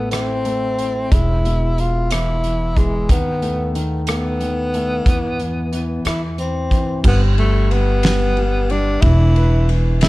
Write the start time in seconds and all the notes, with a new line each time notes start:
Already playing: A1 A3 B3 E4
0.11 C4 E4, cross-stick, closed hi-hat
0.45 A3, closed hi-hat
0.78 E4, closed hi-hat
1.11 E1 G#3 E4, kick, closed hi-hat
1.45 B2, closed hi-hat
1.78 F4, closed hi-hat
2.11 E3 E4, cross-stick, closed hi-hat
2.44 E3, closed hi-hat
2.77 E3 G#3, kick, closed hi-hat
3.09 D#2 D#3 B3, kick, closed hi-hat
3.42 A3, closed hi-hat
3.75 D#3, closed hi-hat
4.07 A3 B3, cross-stick, closed hi-hat
4.41 D#3, closed hi-hat
4.74 A3, closed hi-hat
5.06 E2 E3, kick, closed hi-hat
5.39 E3, closed hi-hat
5.72 E3, closed hi-hat
6.05 E2 E3 E4, cross-stick, closed hi-hat
6.38 E3 C4, closed hi-hat
6.71 E3, kick, closed hi-hat
7.04 G1 G3 B3, kick, crash
7.38 G3 A3, ride
7.71 G3 B3, ride
8.03 G3, snare, ride
8.37 G3, ride
8.70 G3 D4, ride
9.01 E1 E3 E4, kick, ride
9.36 B4, ride
9.69 E3, ride
10.01 G#3 E4, snare, ride